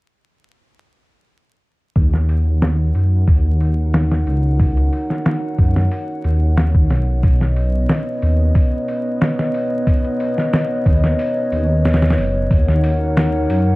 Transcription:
1.96 D#2 D#4 A#4 C#5 F#5, kick, open hi-hat
2.14 snare
2.29 open hi-hat
2.62 snare, open hi-hat
2.95 F#2, open hi-hat
3.28 D#2, kick, open hi-hat
3.60 open hi-hat
3.94 snare, open hi-hat
4.11 snare
4.27 C#2, open hi-hat
4.59 kick, open hi-hat
4.77 closed hi-hat
4.93 open hi-hat
5.10 snare
5.26 snare, open hi-hat
5.58 F#2, kick, open hi-hat
5.76 snare
5.91 open hi-hat
6.24 D#2, open hi-hat
6.57 snare, open hi-hat
6.75 kick
6.90 B1, snare, open hi-hat
7.23 B3 B4 D#5, kick, open hi-hat
7.41 snare
7.56 open hi-hat
7.89 snare, open hi-hat
8.22 D#2, open hi-hat
8.55 kick, open hi-hat
8.88 open hi-hat
9.21 snare, open hi-hat
9.39 snare
9.54 open hi-hat
9.87 kick, open hi-hat
10.04 closed hi-hat
10.20 open hi-hat
10.38 snare
10.53 snare, open hi-hat
10.86 D#2, kick, open hi-hat
11.04 snare
11.19 open hi-hat
11.52 D#2, open hi-hat
11.85 snare, open hi-hat
11.94 snare, open hi-hat
12.02 snare, open hi-hat
12.10 snare, open hi-hat
12.18 F#1, open hi-hat
12.51 D#2 D#4 A#4 F#5, kick, open hi-hat
12.68 snare
12.84 open hi-hat
13.17 snare, open hi-hat
13.50 F#2, open hi-hat

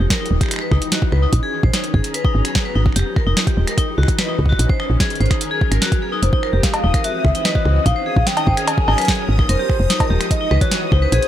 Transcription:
Already playing: F3 A#5
0.00 F1
0.06 G#3 D#4 G4
0.10 A#4, kick, snare, closed hi-hat
0.21 D#4
0.26 closed hi-hat
0.31 D#1
0.41 G4, finger snap, kick, closed hi-hat
0.43 finger snap
0.46 finger snap
0.49 E3, finger snap
0.51 finger snap, closed hi-hat
0.54 finger snap
0.56 finger snap
0.59 B4, finger snap
0.71 C#2 D#4, finger snap, kick
0.80 F#4, closed hi-hat
0.88 C#4 F#4 B4, snare, closed hi-hat
1.02 kick
1.12 C#2 B4, finger snap
1.23 D#4
1.33 A#1 D#3, kick, closed hi-hat
1.43 G#4
1.63 A#1 C5, kick
1.70 D#4 G#4 A#5, snare, closed hi-hat
1.84 closed hi-hat
1.94 G#1 G#4, kick
2.04 closed hi-hat
2.14 F#3 B4, closed hi-hat
2.25 D#4, kick
2.35 G#1 B3
2.45 G#4, finger snap, closed hi-hat
2.55 kick, snare, closed hi-hat
2.65 B4
2.76 G#1 D#4
2.86 finger snap, kick
2.92 F1 F3 G4, finger snap, closed hi-hat
2.99 finger snap
3.16 A#4, finger snap, kick
3.26 F1 D#4
3.32 G#3 G4
3.37 snare, closed hi-hat
3.47 G4, kick, closed hi-hat
3.57 D#1
3.67 A#4, finger snap, closed hi-hat
3.78 E3 D#4, kick, closed hi-hat
3.98 C#2 F#4
4.03 finger snap
4.08 kick, closed hi-hat
4.14 C#4 F#4 B4
4.18 B4, snare, closed hi-hat
4.29 D#4
4.39 C#2, kick
4.46 F#4, kick
4.52 kick
4.59 A#1 D#3, closed hi-hat
4.69 C5, kick
4.80 D#4, finger snap
4.90 A#1
4.96 G#4 A#4
5.00 G#4, kick, snare, closed hi-hat
5.10 closed hi-hat
5.15 closed hi-hat
5.20 G#1 C5, closed hi-hat
5.26 closed hi-hat
5.31 D#4, finger snap, kick, closed hi-hat
5.41 F#3, closed hi-hat
5.51 G#4
5.61 kick
5.71 G#1 A#4, finger snap, closed hi-hat
5.78 B3
5.82 F#4, snare, closed hi-hat
5.92 kick, closed hi-hat
6.02 G#4
6.12 D#4
6.22 F1 F3 C5 D#6, closed hi-hat
6.33 D#4, kick
6.43 G4 A#4, finger snap
6.53 F1 G#3 G4
6.59 C4
6.63 F5, kick, snare, closed hi-hat
6.74 closed hi-hat, cowbell
6.84 D#1 D#4
6.94 A#4, finger snap, kick, closed hi-hat
7.04 E3 F#4 E5, closed hi-hat
7.25 C#2 B4, finger snap, kick
7.35 D#4, closed hi-hat
7.40 C#4 F#4
7.45 B4 D#5, snare, closed hi-hat
7.55 F#4, kick
7.65 C#2, finger snap
7.86 A#1 D#3 D#4 F5, kick, closed hi-hat
7.96 C5
8.06 G#4
8.16 A#1, kick
8.23 G#4 A#4 G5
8.27 snare, closed hi-hat
8.37 D#4, closed hi-hat, cowbell
8.47 G#1 C5, kick
8.57 G#4, finger snap, closed hi-hat
8.67 F#3 G#5, closed hi-hat, cowbell
8.78 kick
8.88 G#1 D#4, cowbell
8.98 B4, finger snap, closed hi-hat
9.01 B3, closed hi-hat
9.05 G#4, kick, snare, closed hi-hat
9.08 closed hi-hat
9.12 closed hi-hat
9.15 closed hi-hat
9.29 G#1
9.39 D#4, finger snap, kick
9.49 F1 F3 A#4 C5, closed hi-hat
9.59 G4
9.69 D#4, finger snap, kick
9.80 F1
9.86 G#3 G4
9.90 D#4, snare, closed hi-hat
10.00 A#4, kick, closed hi-hat, cowbell
10.10 D#1 G4
10.21 finger snap, closed hi-hat
10.31 E3 D#5, kick, closed hi-hat
10.41 D#4
10.51 C#2 F#4 B4, finger snap
10.61 C#4 F#4 C#5, kick, closed hi-hat
10.68 B4, snare, closed hi-hat
10.92 C#2 D#4 C5, finger snap, kick
11.02 B4
11.12 A#1 D#3 G#4, closed hi-hat
11.22 closed hi-hat

